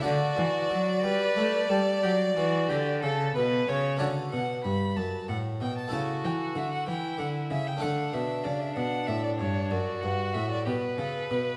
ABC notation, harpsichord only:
X:1
M:12/8
L:1/8
Q:3/8=63
K:D
V:1 name="Harpsichord"
[A,DF]12 | [A,DF]6 [A,EA]6 | [A,DA]12 |]
V:2 name="Harpsichord" clef=bass
D, E, F, G, A, G, F, E, D, C, B,, C, | D, B,, G,, F,, A,, B,, C, E, D, E, D, C, | D, B,, C, B,, A,, G,, F,, G,, A,, B,, C, B,, |]